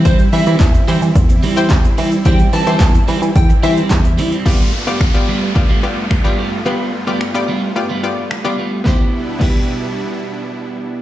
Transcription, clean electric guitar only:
\new Staff \with { instrumentName = "Clean electric guitar" } { \time 4/4 \key c \major \tempo 4 = 109 <g c' e'>8 <g c' e'>16 <g c' e'>16 r8 <g c' e'>8 r8 <g c' e'>16 <g c' e'>16 r8 <g c' e'>8 | <g c' e'>8 <g c' e'>16 <g c' e'>16 r8 <g c' e'>8 r8 <g c' e'>16 <g c' e'>16 r8 <g c' e'>16 <g c' e'>16 | <g b f'>8 r16 <g b f'>16 r8 <g b f'>8 r16 <g b f'>8 r8 <g b f'>16 <g b f'>8 | <g b f'>8 r16 <g b f'>16 r8 <g b f'>8 r16 <g b f'>8 r8 <g b f'>16 <g b f'>8 |
<b e' g'>16 r8. <b e' g'>2. | }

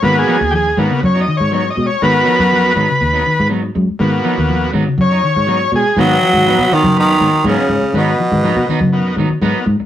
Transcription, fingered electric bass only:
\new Staff \with { instrumentName = "Fingered electric bass" } { \clef bass \time 4/4 \key gis \dorian \tempo 4 = 121 gis,8 r16 dis,8. gis,16 r16 fis,8 r16 gis,8. b,16 r16 | gis,8 r16 fis,8. gis,16 r16 dis,8 r16 gis,8. fis,16 r16 | gis,8 r16 dis,8. gis,16 r16 fis,8 r16 gis,8. b,16 r16 | gis,8 r16 gis,8 b,16 r16 fis,8. gis,16 r16 gis,16 r16 gis,16 r16 |
gis,8 r16 gis,8 b,16 r16 fis,8. gis,16 r16 gis,16 r16 gis,16 r16 | }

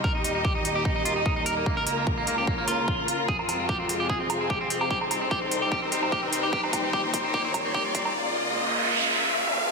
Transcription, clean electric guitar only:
\new Staff \with { instrumentName = "Clean electric guitar" } { \time 4/4 \key ees \mixolydian \tempo 4 = 148 bes'16 ees'16 ees'16 ees'16 g'16 ees'16 ees'16 g'16 ees'16 ees'16 f'16 ees'16 ees'16 ees'16 bes'16 bes16 | bes16 bes'16 bes16 bes16 r16 bes16 bes16 g'16 bes16 bes16 f'4~ f'16 r16 | aes'16 c'16 c'16 c'16 g'16 c'16 c'16 g'16 aes'16 c'16 c'16 c'16 g'16 c'16 c'16 g'16 | g'16 c'16 c'16 c'16 g'16 c'16 c'16 g'16 g'16 c'16 c'16 c'16 g'16 c'16 c'16 g'16 |
g'16 c'16 c'16 c'16 g'16 c'16 c'16 c'16 g'16 c'16 c'16 c'16 g'16 c'16 c'16 c'16 | r1 | }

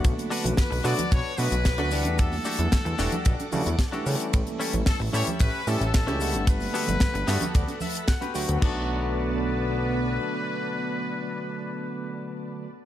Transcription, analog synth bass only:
\new Staff \with { instrumentName = "Analog synth bass" } { \clef bass \time 4/4 \key b \minor \tempo 4 = 112 b,,16 r8 b,,16 r16 b,,16 b,16 r16 b,,16 r16 b,16 b,,8 d,8 e,16~ | e,8 r16 e,16 r16 e,16 e,,16 r16 b,,16 r16 cis16 e,16 r8 cis16 r16 | a,,16 r8 a,,16 r16 a,,16 a,16 r16 a,,16 r16 a,16 a,,8 cis,8 g,,16~ | g,,8 r16 g,,16 r16 g,,16 g,16 r16 d,16 r4 r16 d,16 d,16 |
b,,2. r4 | r1 | }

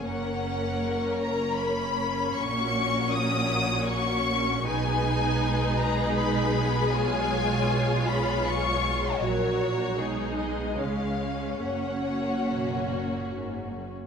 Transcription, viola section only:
\new Staff \with { instrumentName = "Viola section" } { \time 3/4 \key fis \major \tempo 4 = 78 << { cis'2.~ | cis'2. | dis'2. | eis'2. |
fis'4 dis'4 cis'4~ | cis'2~ cis'8. r16 | } \\ { ais2.~ | ais2. | gis2.~ | gis2. |
fis4 gis2 | ais2~ ais8. r16 | } >> }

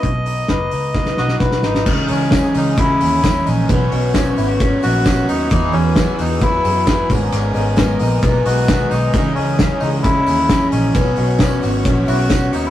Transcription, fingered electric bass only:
\new Staff \with { instrumentName = "Fingered electric bass" } { \clef bass \time 4/4 \key b \major \tempo 4 = 132 b,,4 fis,,8 cis,4 b,,8 b,,8 gis,,8 | \key cis \dorian cis,8 cis,8. r16 cis,4 dis,4 ais,,8 | b,,8 b,,4 gis,,4 ais,,4 dis,8 | e,8 e,8. r16 e,4 fis,4 gis,,8 |
gis,,8 gis,,4 ais,,8 b,,8 b,,4 b,,8 | r8 cis,8. r16 cis,4 dis,4 ais,,8 | b,,8 b,,4 gis,,8 ais,,8 b,,4 dis,8 | }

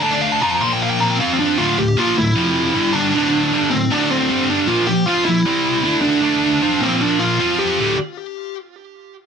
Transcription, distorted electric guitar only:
\new Staff \with { instrumentName = "Distorted electric guitar" } { \clef bass \time 4/4 \key d \minor \tempo 4 = 155 <d a d'>4 <f c' f'>8 <bes, f bes>4. <f c' f'>4 | <d, a, d>8 <d, a,>8 <bes, f bes>8 <d, a,>8 <f, c f>4 <g, d g>4 | <d, a, d>4 <g, d g>8 <d, a,>8 <d, a, d>4 <g, d g>4 | <bes, f bes>8 <bes, f>8 <f c' f'>8 <bes, f>8 <c g c'>4 <d a d'>4 |
<d a d'>4 <f c' f'>8 <bes, f bes>4. <f c' f'>4 | <d, a, d>8 r2. r8 | }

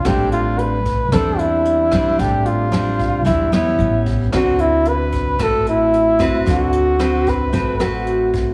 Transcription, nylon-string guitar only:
\new Staff \with { instrumentName = "Nylon-string guitar" } { \time 4/4 \key a \minor \tempo 4 = 112 << { <g c' d'>4. r8 <g c' d'>4. <g c' d'>8~ | <g c' d'>4 <g c' d'>4 <g c' d'>8 <g b cis'>4. | <c' fis' b'>2 <c' fis' b'>4. <c' fis' b'>8~ | <c' fis' b'>4 <c' fis' b'>4 <c' fis' b'>8 <c' fis' b'>4. | } \\ { a,2 e2 | a,2 e4 r4 | d2 a,2 | d2 a,2 | } >> }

